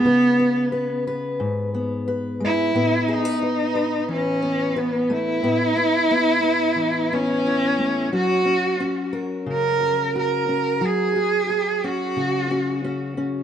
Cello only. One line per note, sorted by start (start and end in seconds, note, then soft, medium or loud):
0.00 1.04 B3 loud
2.45 3.14 E4 medium
3.12 4.11 D#4 medium
4.12 4.80 C#4 medium
4.78 5.13 B3 medium
5.11 7.14 E4 loud
7.13 8.14 C#4 medium
8.15 9.11 F#4 medium
9.52 10.13 A#4 medium
10.19 10.86 A#4 medium
10.85 11.87 G#4 medium
11.86 13.18 F#4 medium